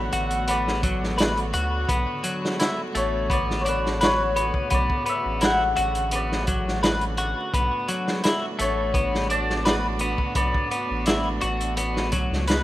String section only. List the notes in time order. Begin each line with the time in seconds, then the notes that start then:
Already playing: D3 A3 B3 F#4
4.71 C#3
7.52 A3 B3 D4 F#4